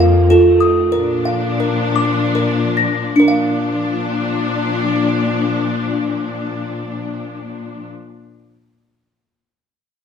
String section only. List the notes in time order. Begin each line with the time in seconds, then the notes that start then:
Already playing: F2 D3 F3 A#3
0.27 D#3 A3
0.92 A#2 F3 D4
3.22 A#2 F3 D4